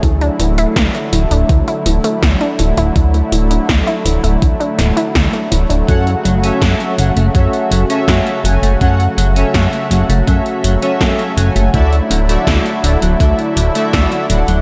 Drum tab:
HH |xxxxxxxxxxxxxxxx|xxxxxxxxxxxxxxxx|xxxxxxxxxxxxxxxx|xxxxxxxxxxxxxxxx|
SD |----o-------o---|----o-----o-o---|----o-------o---|----o-------o---|
BD |o---o---o---o---|o---o---o---o---|o---o---o---o---|o---o---o---o---|

HH |xxxxxxxxxxxxxxxx|
SD |----o-------o---|
BD |o---o---o---o---|